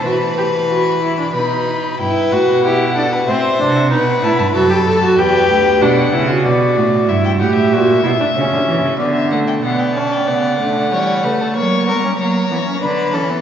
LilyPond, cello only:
\new Staff \with { instrumentName = "Cello" } { \clef bass \time 3/4 \key e \minor \tempo 4 = 94 e2 b,4 | g,8 a,16 b,4~ b,16 a,8 c8 | b,8 a,16 g,16 fis,4 e,8 d,8 | b,8 cis8 b,8 a,8 g,8 a,8 |
ais,8 b,8 cis16 d16 e16 cis16 d4 | b,4 cis8 d8 e8 cis8 | fis8 g8 fis8 e8 d8 e8 | }